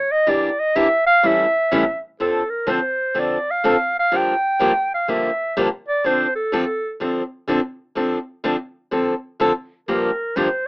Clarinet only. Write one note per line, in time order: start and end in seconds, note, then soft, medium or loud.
0.00 0.13 C#5 medium
0.12 0.31 D#5 loud
0.29 0.61 D5 medium
0.60 0.77 D#5 loud
0.76 1.06 E5 loud
1.06 1.28 F5 loud
1.26 2.03 E5 loud
2.21 2.51 A4 medium
2.50 2.71 A#4 medium
2.70 3.21 C5 medium
3.19 3.52 D5 medium
3.51 3.96 F5 loud
3.99 4.18 F5 medium
4.16 4.92 G5 medium
4.94 5.11 F5 medium
5.09 5.56 E5 medium
5.88 6.07 D5 medium
6.06 6.35 C5 medium
6.36 6.96 A4 medium
9.88 10.38 A#4 medium
10.36 10.68 C5 medium